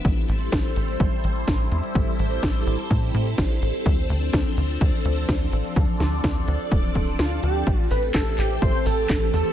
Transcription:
0.05 analog synth bass A1, string machine G3 C4 E4 A4 C5, kick, closed hi-hat
0.17 closed hi-hat
0.29 analog synth bass A1, closed hi-hat
0.40 closed hi-hat
0.52 analog synth bass A1, kick, snare, closed hi-hat
0.64 closed hi-hat
0.76 analog synth bass A1, closed hi-hat
0.88 closed hi-hat
1.00 analog synth bass A1, kick, closed hi-hat
1.12 closed hi-hat
1.24 analog synth bass A1, closed hi-hat
1.36 closed hi-hat
1.48 analog synth bass A1, kick, snare, closed hi-hat
1.60 closed hi-hat
1.72 analog synth bass E2, closed hi-hat
1.83 closed hi-hat
1.95 analog synth bass A1, kick, closed hi-hat
2.07 closed hi-hat
2.19 analog synth bass A1, closed hi-hat
2.31 closed hi-hat
2.43 analog synth bass A1, kick, snare, closed hi-hat
2.55 closed hi-hat
2.67 analog synth bass A1, closed hi-hat
2.79 closed hi-hat
2.91 analog synth bass A2, kick, closed hi-hat
3.03 closed hi-hat
3.14 analog synth bass A2, closed hi-hat
3.26 closed hi-hat
3.38 analog synth bass A1, kick, snare, closed hi-hat
3.50 closed hi-hat
3.62 analog synth bass A1, closed hi-hat
3.74 closed hi-hat
3.86 analog synth bass D2, string machine F3 D4 C5, kick, closed hi-hat
3.98 closed hi-hat
4.09 analog synth bass D2, closed hi-hat
4.21 closed hi-hat
4.33 analog synth bass D2, kick, snare, closed hi-hat
4.45 closed hi-hat
4.57 analog synth bass D2, closed hi-hat
4.69 closed hi-hat
4.81 analog synth bass D2, kick, closed hi-hat
4.93 closed hi-hat
5.05 analog synth bass D2, closed hi-hat
5.17 closed hi-hat
5.29 analog synth bass D2, kick, snare, closed hi-hat
5.41 closed hi-hat
5.52 analog synth bass A1, closed hi-hat
5.64 closed hi-hat
5.76 analog synth bass D2, string machine D5, kick, closed hi-hat
5.88 closed hi-hat
6.00 analog synth bass D2, snare, closed hi-hat
6.12 closed hi-hat
6.24 analog synth bass D2, kick, snare, closed hi-hat
6.36 closed hi-hat
6.48 analog synth bass D2, closed hi-hat
6.60 closed hi-hat
6.72 analog synth bass D1, kick, closed hi-hat
6.83 closed hi-hat
6.95 analog synth bass D1, kick, closed hi-hat
7.07 closed hi-hat
7.19 analog synth bass D2, analog synth lead F4, snare, closed hi-hat
7.31 closed hi-hat
7.43 analog synth bass D2, analog synth lead G4, closed hi-hat
7.55 closed hi-hat
7.67 analog synth bass A1, string machine E3 A3 C4 G4 A4, kick, closed hi-hat, crash, tambourine
7.79 closed hi-hat
7.91 analog synth bass A1, analog synth lead B4, open hi-hat, tambourine
8.03 closed hi-hat, tambourine
8.14 analog synth bass A1, analog synth lead A4, kick, snare, clap, closed hi-hat, tambourine
8.26 closed hi-hat
8.38 analog synth bass A1, analog synth lead G4, clap, open hi-hat, tambourine
8.50 closed hi-hat, tambourine
8.62 analog synth bass A1, analog synth lead C5, kick, closed hi-hat, tambourine
8.74 closed hi-hat, tambourine
8.86 analog synth bass A1, analog synth lead A4, open hi-hat, tambourine
8.98 closed hi-hat, tambourine
9.10 analog synth bass A1, kick, snare, clap, closed hi-hat, tambourine
9.22 closed hi-hat
9.33 analog synth bass E2, analog synth lead A4, open hi-hat, tambourine
9.45 closed hi-hat, tambourine

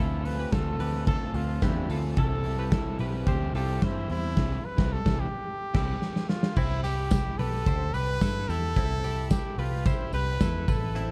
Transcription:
Already playing: picked electric bass D2, overdriven electric guitar D3 A3, trumpet E4
0.00 overdriven electric guitar C4 F4, clean electric guitar F4 A4
0.25 overdriven electric guitar A3 C4 F4, trumpet B4, open hi-hat
0.39 clean electric guitar G4 B4
0.52 picked electric bass D2, overdriven electric guitar D3 A3 C4 F4, clean electric guitar F4 A4, trumpet A4, kick, snare, closed hi-hat
0.79 picked electric bass D2, overdriven electric guitar A3 C4 F4, clean electric guitar G4 B4, open hi-hat
1.07 overdriven electric guitar D3 A3 C4 F4, clean electric guitar F4 A4, trumpet A4, kick, closed hi-hat
1.34 picked electric bass D2, overdriven electric guitar A3 C4 F4, trumpet F4, open hi-hat
1.61 picked electric bass E2, overdriven electric guitar D3 A3 C4 F4, clean electric guitar D4 G4, trumpet E4, kick, snare, closed hi-hat
1.89 picked electric bass D2, overdriven electric guitar A3 C4 F4, clean electric guitar F4 A4, open hi-hat
2.17 picked electric bass C2, overdriven electric guitar C3 E3 G3 C4 E4, clean electric guitar E4 A4, trumpet A4, kick, closed hi-hat
2.44 overdriven electric guitar G3 C4 E4, open hi-hat
2.59 clean electric guitar G4 B4
2.71 overdriven electric guitar E3 G3 C4 E4, clean electric guitar E4 A4, kick, snare, closed hi-hat
2.99 picked electric bass B1, overdriven electric guitar G3 C4 E4, clean electric guitar G4 B4, open hi-hat
3.26 picked electric bass D2, overdriven electric guitar C3 E3 G3 C4 E4, trumpet G4, clean electric guitar G4 C5, kick, closed hi-hat
3.53 picked electric bass C2, overdriven electric guitar G3 C4 E4, clean electric guitar F4 A4, trumpet G4, open hi-hat
3.81 picked electric bass G2, overdriven electric guitar E3 G3 C4 E4, trumpet E4, clean electric guitar G4 C5, kick, snare, closed hi-hat
4.09 picked electric bass E2, overdriven electric guitar G3 C4 E4, trumpet E4, open hi-hat
4.36 picked electric bass C2, overdriven electric guitar C3 E3 G3 C4 E4, kick, snare, crash
4.65 trumpet B4
4.77 picked electric bass C2, overdriven electric guitar G3 C4 E4, kick, snare
4.93 trumpet A4
5.05 picked electric bass C2, overdriven electric guitar E3 G3 C4 E4, kick, snare
5.20 trumpet G4
5.74 picked electric bass C2, overdriven electric guitar G3 C4 E4, clean electric guitar E4 G4, kick, snare, crash
6.02 snare
6.16 snare
6.29 trumpet F4, snare
6.43 snare
6.56 picked electric bass C2, clean electric guitar C4 E4, trumpet E4, kick, crash, tambourine
6.84 clean electric guitar E4 G4, trumpet G4, open hi-hat, tambourine
7.11 kick, snare, hi-hat pedal, ride, tambourine
7.38 picked electric bass B1, clean electric guitar G4 B4, trumpet A4, open hi-hat
7.66 picked electric bass D2, clean electric guitar G4 C5, kick, hi-hat pedal, ride, tambourine
7.94 picked electric bass C2, clean electric guitar G4 B4, trumpet B4, open hi-hat, tambourine
8.21 picked electric bass G2, clean electric guitar E4 A4, kick, snare, hi-hat pedal, ride, tambourine
8.49 picked electric bass E2, clean electric guitar E4 G4, trumpet A4, open hi-hat, tambourine
8.76 picked electric bass C2, clean electric guitar C4 E4, kick, hi-hat pedal, ride, tambourine
9.04 clean electric guitar E4 G4, open hi-hat, tambourine
9.31 trumpet G4, kick, snare, hi-hat pedal, ride, tambourine
9.58 picked electric bass C2, trumpet F4, clean electric guitar G4 B4, open hi-hat
9.86 trumpet E4, clean electric guitar G4 C5, kick, hi-hat pedal, ride, tambourine
10.13 picked electric bass C2, clean electric guitar G4 B4, trumpet B4, open hi-hat, tambourine
10.40 picked electric bass E2, clean electric guitar E4 A4, kick, snare, hi-hat pedal, ride, tambourine
10.68 picked electric bass A1, clean electric guitar E4 B4, trumpet A4, kick, open hi-hat, tambourine
10.95 clean electric guitar C4 E4, hi-hat pedal, ride

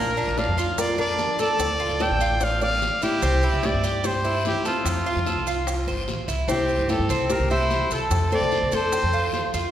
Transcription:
Already playing: upright bass A#1, cuban tres A#3, nylon-string guitar F4, trumpet A#4
0.17 cuban tres D4, high bongo, maracas
0.28 upright bass A#1
0.37 nylon-string guitar D5, trumpet F5, high bongo, short guiro, maracas
0.48 upright bass F2
0.58 cuban tres F4, high bongo, short guiro, maracas
0.78 nylon-string guitar A#4, trumpet D5, high bongo, long guiro, maracas
0.98 cuban tres D4, nylon-string guitar A#4, trumpet D5, maracas
1.19 high bongo, low bongo, short guiro, maracas
1.39 cuban tres A4, nylon-string guitar A4, trumpet D5, high bongo, short guiro, maracas
1.59 upright bass D2, high bongo, long guiro, maracas
1.80 cuban tres F4, high bongo, maracas
1.89 upright bass D2
2.00 cuban tres A4, nylon-string guitar D5, trumpet G5, high bongo, short guiro, maracas
2.10 upright bass A1
2.20 cuban tres F4, high bongo, short guiro, maracas
2.40 nylon-string guitar D5, trumpet F5, high bongo, long guiro, maracas
2.61 cuban tres D5, nylon-string guitar D5, trumpet F5, maracas
2.81 high bongo, low bongo, short guiro, maracas
3.02 cuban tres E4, nylon-string guitar E4, trumpet G4, high bongo, short guiro, maracas
3.22 upright bass C2, cuban tres C4, high bongo, long guiro, maracas
3.43 cuban tres E4, high bongo, maracas
3.53 upright bass C2
3.63 nylon-string guitar G4, trumpet D5, high bongo, short guiro, maracas
3.74 upright bass G2
3.83 cuban tres G4, high bongo, short guiro, maracas
4.04 nylon-string guitar G4, trumpet C5, high bongo, long guiro, maracas
4.25 cuban tres E4, maracas
4.45 nylon-string guitar E4, trumpet G4, high bongo, low bongo, short guiro, maracas
4.65 nylon-string guitar C4, trumpet F4, cuban tres A4, high bongo, short guiro, maracas
4.85 upright bass F2, high bongo, long guiro, maracas
5.06 cuban tres F4, high bongo, maracas
5.16 upright bass F2
5.26 cuban tres A4, high bongo, short guiro, maracas
5.36 upright bass C2
5.47 cuban tres F4, high bongo, short guiro, maracas
5.67 high bongo, long guiro, maracas
5.87 upright bass G1, cuban tres C5, maracas
6.08 upright bass A1, high bongo, low bongo, short guiro, maracas
6.28 upright bass C2, cuban tres E4, high bongo, short guiro, maracas
6.48 upright bass C2, cuban tres C4, nylon-string guitar E4, trumpet G4, high bongo, long guiro, maracas
6.69 high bongo, maracas
6.79 upright bass G2
6.89 nylon-string guitar E4, cuban tres G4, trumpet A4, high bongo, short guiro, maracas
6.99 upright bass G2
7.09 upright bass C2, cuban tres C4, high bongo, short guiro, maracas
7.29 nylon-string guitar G4, trumpet A#4, high bongo, long guiro, maracas
7.39 upright bass C2
7.50 cuban tres E4, nylon-string guitar G4, trumpet C5, maracas
7.71 high bongo, low bongo, short guiro, maracas
7.90 upright bass C2, nylon-string guitar F4, cuban tres A4, trumpet A4, high bongo, short guiro, maracas
8.10 upright bass F2, high bongo, long guiro, maracas
8.32 cuban tres C4, nylon-string guitar A4, trumpet D5, high bongo, maracas
8.41 upright bass C2
8.51 high bongo, short guiro, maracas
8.62 upright bass C2
8.72 upright bass F2, nylon-string guitar A4, cuban tres A4, trumpet C5, high bongo, short guiro, maracas
8.92 cuban tres C4, high bongo, long guiro, maracas
9.03 upright bass F2
9.13 cuban tres F4, maracas
9.33 high bongo, low bongo, short guiro, maracas
9.54 upright bass F2, cuban tres F4, high bongo, short guiro, maracas

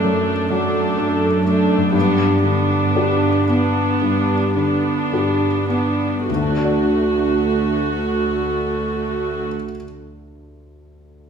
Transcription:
Already playing: felt piano F#2 F#3 A3 D4 A4, harp F#2 A3 D4 A4, viola section A3 D4
0.03 felt piano F#2, cello section F#2
0.50 felt piano F#3, viola section A3 D4
0.96 cello section F#2, felt piano D4 A4
1.45 felt piano A3, viola section A3 D4
1.77 harp G2
1.82 harp B3
1.86 harp D4
1.91 felt piano G2, viola section B3 D4, harp G4
1.95 cello section G2
2.44 felt piano D3, viola section B3 D4
2.95 cello section G2, felt piano D4 G4
3.48 viola section B3 D4, felt piano B3
4.02 cello section G2, felt piano G2
4.55 felt piano D3, viola section B3 D4
5.11 cello section G2, felt piano D4 G4
5.70 viola section B3 D4, felt piano B3
6.28 cello section D2, felt piano D2, harp D3, viola section A3 F#4
6.36 felt piano D3, harp A3
6.43 felt piano A3, harp D4
6.50 felt piano D4, harp F#4
6.57 felt piano F#4, harp D5
6.64 felt piano D5

